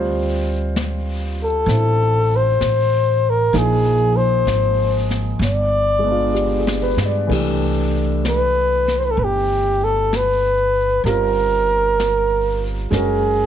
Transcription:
Already playing: D2 G3 C4 F4 C5
0.76 brush sweep, snare, hi-hat pedal
1.44 A4
1.66 A1 C4 E4, brush sweep, snare
2.36 C5
2.60 A1, brush sweep, snare, hi-hat pedal
3.30 A#4
3.53 A#1 F3 A#3 D#4 G#4, brush sweep, snare
3.58 G#4
4.16 C5
4.46 G#1, brush sweep, snare, hi-hat pedal
5.10 snare
5.39 G1, brush sweep, snare
5.45 D5
5.99 G#3
6.04 B3 D4
6.11 F4
6.34 G4, hi-hat pedal
6.59 G#4
6.67 snare
6.82 B4
6.96 G2, snare
7.05 D5
7.27 C2 E3 A3 D4, brush sweep, kick, crash
7.32 G4
8.25 B4, brush sweep, snare, hi-hat pedal
8.88 snare
8.98 C5
9.05 B4
9.11 A4
9.17 G1 B4, brush sweep
9.24 G4
9.84 A4
10.13 B4, brush sweep, snare, hi-hat pedal
11.04 G1 G3 C4 A#4, brush sweep, snare
11.08 F4 A#4
12.00 brush sweep, snare, hi-hat pedal
12.90 F#1 G#3 C#4 F#4 G#4, brush sweep, snare
12.95 A#4

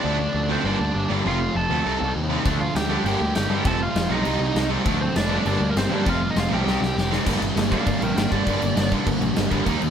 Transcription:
Already playing: D4 D5
0.03 D2 D3 F3 A3 D4
0.35 D2
0.49 D3 F3 A3 C4 D4 C5
0.63 G1 G2 D3 G3 A#3 D4 D5
0.80 D2
0.95 G1
1.09 G1 G2 D3 G3 A#3 D4
1.24 F1 F2 C3 F3 A3 C4 F4 F5
1.55 F1 A4 A5
1.70 D2 F2 C3 F3 A3 C4
1.85 C2 C3 G3 C4 D#4
2.01 C2
2.16 D#2
2.29 C3 G3 C4 D#4
2.44 D2 D3 F3 A3 D4, kick, crash
2.60 F4 F5
2.75 D2 G4 G5, snare, crash
2.90 D3 F3 A3 D4
3.04 G1 G2 D3 G3 A#3 D4 G4 G5, crash
3.21 D2
3.35 G1 G4 G5, snare, crash
3.49 G2 D3 G3 A#3 D4
3.64 F1 F2 C3 F3 A3 C4 A4 A5, kick, crash
3.82 F4 F5
3.96 F1, snare, crash
4.09 B1 F2 C3 F3 A3 C4 D#4 D#5
4.24 C2 C3 G3 C4 D#4, crash
4.39 C2
4.55 C2, snare, crash
4.69 C3 G3 C4 D#4
4.85 D2 D3 F3 A3 D4, kick, crash
5.01 C4 C5
5.16 F1 D4 D5, snare, crash
5.29 D3 F3 A3 D4
5.44 G1 G2 D3 G3 A#3 D4 D5, crash
5.61 D2
5.69 A#3 A#4
5.76 G1 C4 C5, snare, crash
5.90 G2 D3 G3 A#3 D4
5.94 D5
6.04 F1 F2 C3 F3 A3 C4 F4, kick, crash
6.09 F5
6.30 D#4 D#5
6.36 F1 F4 F5, snare, crash
6.49 B1 F2 C3 F3 A3 C4 G4
6.54 G5
6.64 C2 C3 G3 C4 D#4, snare
6.81 C2, snare
6.96 F1, snare
7.11 C3 G3 C4 D#4, snare
7.25 G1 G2 D3 G3 A#3 D4 G4, kick, crash
7.40 G1 G2 D3 G3 A#3, crash
7.55 G1 G2 D3 G3 A#3, snare, crash
7.70 G2 D3 G3 A#3 D4 D5 F5, kick, crash
7.85 G1 G2 D3 G3 A#3 D5 F5, kick, crash
8.01 A#1 G2 D3 G3 A#3 A#4 G5, crash
8.15 G1 G2 D3 G3 A#3 A#4 G5, snare, crash
8.30 G1 G2 D3 G3 A#3 D4 D5, kick, crash
8.46 G1 G2 D3 G3 A#3 D4 G4, kick, crash
8.61 G1 G2 D3 G3 A#3, crash
8.76 G1 G2 D3 G3 A#3, snare, crash
8.92 G2 D3 G3 A#3 D4, kick, crash
9.06 G1 G2 D3 G3 A#3, kick, crash
9.21 A#1 G2 D3 G3 A#3, crash
9.36 G1 G2 D3 G3 A#3, snare, crash
9.50 G1 G2 D3 G3 A#3 D4, kick, crash
9.66 D#2 D#3 A#3 D#4 G4, kick, crash
9.80 D#2 D#3 A#3, crash

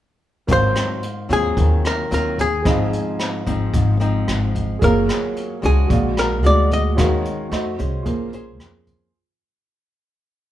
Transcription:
0.47 G#1 G#2 F#3 C4 F4 A#4 C5 F5, kick, closed hi-hat
0.53 C5
0.75 cross-stick, closed hi-hat
1.03 closed hi-hat
1.29 D#2 F#3 C4 F4 G#4, kick, closed hi-hat
1.56 D#2 D#3, kick, closed hi-hat
1.85 A#4, cross-stick, closed hi-hat
2.11 D#2 F#3 C4 F4 A#4, closed hi-hat
2.38 G#4, kick, closed hi-hat
2.62 G#1 G#2 F3 C4 D#4 G#4 C5 D#5, kick, cross-stick, closed hi-hat
2.68 F5
2.93 closed hi-hat
3.19 cross-stick, closed hi-hat
3.46 G#1 F3 C4 D#4, kick, closed hi-hat
3.73 G#1 G#2, kick, closed hi-hat
4.00 F3 C4 D#4, closed hi-hat
4.28 G#1, cross-stick, closed hi-hat
4.55 kick, closed hi-hat
4.79 F#1 F#3 A#3 F4 G#4 A#4, kick, closed hi-hat
4.83 A#4 C#5 F5
5.09 cross-stick, closed hi-hat
5.36 closed hi-hat
5.62 C#2 G#3 D4 F#4 G#4, kick, closed hi-hat
5.86 A#2 F#4 G#4 D5
5.90 A#1 F5, kick, closed hi-hat
6.17 A#4, cross-stick, closed hi-hat
6.43 D2 G#3 D4 F#4 D5, closed hi-hat
6.71 D#5, kick, closed hi-hat
6.95 D#2 D#3 G#3 C#4 F#4 G#4 C#5 F5, kick, cross-stick, closed hi-hat
7.25 closed hi-hat
7.50 F2 A3 D#4 F#4 C5 D#5, cross-stick, closed hi-hat
7.79 C2 C#4 G#4 C5, kick, closed hi-hat
8.03 A#1 A#3 F4 G#4 C5, kick, closed hi-hat
8.33 C#4 G#4 C5, closed hi-hat
8.60 F2, cross-stick, closed hi-hat
8.87 kick, closed hi-hat

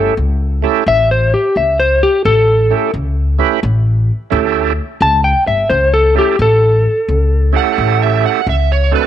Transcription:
Already playing: A3 C#4 E4 G4 A4
0.17 C#2
0.62 A3 C#4 E4 G4 A4
0.86 A1 E5
1.11 C5
1.34 G4
1.56 C#2 E5
1.80 C5
2.03 G4
2.25 A1 A4
2.70 A3 C#4 E4 G4 A4
2.94 C#2
3.39 A3 C#4 E4 G4 B4
3.63 A1
4.30 D2 A3 C#4 E4 G4 A4
5.01 C#2 A5
5.24 G5
5.47 G1 E5
5.70 C#2 C5
5.94 A4
6.15 A3 C#4 E4 G4 A4
6.39 A1 A4
7.08 C#2
7.53 A3 C#4 E4 G4 A4 F#5
7.78 A1
8.02 E5
8.26 F#5
8.47 C#2 E5
8.72 C#5
8.92 A3 C4 D4 F#4 A4 B4

